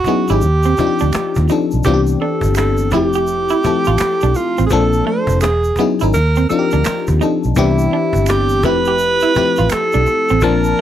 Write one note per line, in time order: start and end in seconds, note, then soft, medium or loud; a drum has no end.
0.00 0.31 F#4 medium
0.04 0.24 F#3 medium
0.04 0.22 B3 medium
0.04 0.24 C#4 medium
0.04 0.24 D#4 medium
0.04 0.25 E4 medium
0.04 muted fingered electric bass stroke soft
0.04 cajon bass medium
0.04 shaker soft
0.08 0.25 G#4 medium
0.28 0.41 G#1 loud
0.28 0.42 F#3 medium
0.28 0.42 C#4 medium
0.28 0.42 D#4 medium
0.28 0.38 E4 medium
0.28 0.43 E4 medium
0.28 1.49 G4 loud
0.28 0.43 G#4 medium
0.28 cajon slap soft
0.28 shaker medium
0.41 0.73 D#2 loud
0.41 shaker medium
0.63 0.74 C4 medium
0.63 shaker medium
0.77 1.38 F3 medium
0.77 1.38 C4 medium
0.77 1.39 D4 medium
0.77 1.39 D#4 medium
0.77 0.87 F4 medium
0.77 muted clean electric guitar stroke soft
0.77 muted fingered electric bass stroke medium
0.77 cajon bass loud
0.77 shaker soft
0.87 1.42 G4 medium
0.99 1.12 D2 medium
0.99 1.09 D4 medium
0.99 cajon slap soft
0.99 shaker medium
1.13 finger snap medium
1.13 muted fingered electric bass stroke soft
1.13 cajon slap loud
1.13 shaker medium
1.35 1.48 D#2 medium
1.35 cajon bass loud
1.35 shaker soft
1.49 1.80 F3 medium
1.49 1.80 C4 medium
1.49 1.80 D4 medium
1.49 1.65 D#4 medium
1.49 1.80 D#4 medium
1.49 1.80 A4 medium
1.49 shaker medium
1.71 1.84 B1 medium
1.71 cajon slap soft
1.71 shaker soft
1.84 2.15 C2 loud
1.84 2.73 E3 loud
1.84 2.73 B3 medium
1.84 2.73 C4 medium
1.84 2.74 D4 medium
1.84 1.94 F4 medium
1.84 2.01 G4 medium
1.84 cajon bass loud
1.84 shaker medium
1.94 2.77 G4 loud
2.07 shaker medium
2.19 2.36 D4 medium
2.19 2.54 A4 medium
2.19 cajon slap soft
2.41 2.93 G1 medium
2.41 cajon bass medium
2.41 shaker medium
2.55 2.90 A4 medium
2.55 finger snap medium
2.55 muted clean electric guitar stroke soft
2.55 cajon slap medium
2.55 cajon slap loud
2.55 shaker medium
2.77 cajon slap soft
2.77 shaker medium
2.91 3.52 F1 loud
2.91 3.53 F3 medium
2.91 3.53 A3 medium
2.91 3.53 C4 medium
2.91 3.08 E4 medium
2.91 3.54 E4 medium
2.91 4.37 G4 loud
2.91 3.54 G4 medium
2.91 cajon bass loud
2.91 shaker soft
3.13 3.24 G4 medium
3.13 cajon slap soft
3.13 shaker medium
3.27 shaker medium
3.48 3.59 E4 medium
3.48 cajon slap soft
3.48 shaker soft
3.52 cajon slap soft
3.64 4.52 F3 medium
3.64 4.52 A3 medium
3.64 4.52 C4 medium
3.64 4.53 E4 medium
3.64 4.53 A4 medium
3.64 muted clean electric guitar stroke soft
3.64 muted fingered electric bass stroke medium
3.64 cajon bass loud
3.64 shaker soft
3.85 3.98 A1 loud
3.85 3.95 F4 medium
3.85 cajon slap soft
3.85 shaker medium
3.98 finger snap medium
3.98 cajon slap loud
3.98 shaker medium
4.20 4.34 B1 loud
4.20 4.31 D4 medium
4.20 cajon slap soft
4.20 shaker soft
4.34 4.66 F4 medium
4.34 muted clean electric guitar stroke soft
4.34 cajon slap soft
4.34 shaker medium
4.57 4.69 A1 loud
4.57 4.67 C4 medium
4.57 cajon slap soft
4.57 shaker soft
4.66 4.73 G#4 medium
4.66 shaker medium
4.70 5.01 A#1 loud
4.70 5.42 F3 medium
4.70 5.42 A#3 loud
4.70 5.42 C4 medium
4.70 5.43 D4 medium
4.70 5.08 A4 loud
4.70 5.43 A4 loud
4.70 cajon bass loud
4.93 shaker medium
5.05 5.22 A3 medium
5.05 5.41 C5 loud
5.05 cajon slap soft
5.27 5.44 F1 loud
5.27 cajon bass loud
5.27 shaker medium
5.41 5.73 E1 loud
5.41 5.85 G#4 medium
5.41 finger snap medium
5.41 muted clean electric guitar stroke soft
5.41 cajon slap medium
5.41 cajon slap loud
5.41 shaker medium
5.64 cajon slap soft
5.64 shaker soft
5.76 5.96 F#3 medium
5.76 5.93 B3 medium
5.76 5.96 C#4 medium
5.76 5.96 D#4 medium
5.76 muted fingered electric bass stroke soft
5.76 cajon bass medium
5.76 shaker soft
5.80 5.96 E4 medium
5.80 5.97 G#4 medium
5.99 6.12 G#1 medium
5.99 6.14 F#3 medium
5.99 6.14 C#4 medium
5.99 6.14 D#4 medium
5.99 6.10 E4 medium
5.99 6.15 E4 medium
5.99 6.15 A#4 medium
5.99 cajon slap soft
5.99 shaker medium
6.13 6.44 D#2 loud
6.13 6.47 A#4 loud
6.13 cajon slap soft
6.13 shaker medium
6.35 6.45 C4 medium
6.35 shaker soft
6.49 7.10 F3 medium
6.49 7.10 C4 medium
6.49 7.10 D4 medium
6.49 7.11 D#4 medium
6.49 6.59 F4 medium
6.49 7.17 A#4 loud
6.49 muted clean electric guitar stroke soft
6.49 muted fingered electric bass stroke medium
6.49 shaker soft
6.59 7.14 G4 medium
6.71 6.84 D2 medium
6.71 6.81 D4 medium
6.71 cajon slap soft
6.71 shaker soft
6.84 finger snap medium
6.84 muted fingered electric bass stroke soft
6.84 cajon slap loud
6.84 shaker medium
7.07 7.19 D#2 medium
7.07 cajon bass loud
7.07 shaker soft
7.20 7.51 F3 medium
7.20 7.51 C4 medium
7.20 7.51 D4 medium
7.20 7.36 D#4 medium
7.20 7.51 D#4 medium
7.20 7.52 A4 medium
7.20 cajon slap soft
7.20 shaker medium
7.43 7.55 B1 medium
7.43 cajon slap soft
7.43 shaker soft
7.55 7.87 C2 loud
7.55 8.44 E3 loud
7.55 8.45 B3 medium
7.55 8.45 C4 medium
7.55 8.45 D4 medium
7.55 8.30 E4 loud
7.55 8.45 G4 loud
7.55 cajon bass loud
7.55 shaker medium
7.79 shaker medium
7.93 8.08 D4 medium
8.13 8.64 G1 medium
8.13 cajon bass medium
8.13 shaker medium
8.26 8.66 G4 loud
8.26 finger snap medium
8.26 muted clean electric guitar stroke soft
8.26 cajon slap medium
8.26 cajon slap loud
8.26 shaker medium
8.49 cajon slap soft
8.49 shaker medium
8.63 9.24 F1 loud
8.63 9.24 F3 medium
8.63 9.25 A3 medium
8.63 9.25 C4 medium
8.63 9.25 E4 medium
8.63 8.80 E4 medium
8.63 9.25 G4 medium
8.63 9.74 B4 loud
8.63 cajon bass loud
8.63 shaker soft
8.85 8.96 G4 medium
8.85 cajon slap soft
8.85 shaker medium
8.99 shaker medium
9.20 9.31 E4 medium
9.20 cajon slap soft
9.20 shaker medium
9.23 cajon slap soft
9.34 10.23 F3 medium
9.34 10.23 A3 medium
9.34 10.23 C4 medium
9.34 10.24 E4 medium
9.34 10.24 G4 medium
9.34 muted clean electric guitar stroke soft
9.34 muted fingered electric bass stroke soft
9.34 cajon bass loud
9.34 shaker soft
9.56 9.69 A1 medium
9.56 9.67 F4 medium
9.56 cajon slap soft
9.56 shaker soft
9.70 10.45 A4 loud
9.70 finger snap medium
9.70 cajon slap loud
9.70 shaker medium
9.91 10.05 B1 loud
9.91 10.03 D4 medium
9.91 cajon slap soft
9.91 shaker soft
10.06 muted clean electric guitar stroke soft
10.06 cajon slap soft
10.06 shaker medium
10.29 10.43 A1 loud
10.29 10.39 C4 medium
10.29 shaker soft
10.41 10.72 A#1 loud
10.41 10.81 F3 loud
10.41 10.81 A#3 loud
10.41 10.81 C4 medium
10.41 10.81 D4 medium
10.41 10.81 A#4 loud
10.41 10.81 A5 loud
10.41 cajon bass loud
10.41 shaker medium
10.64 cajon slap soft
10.64 shaker medium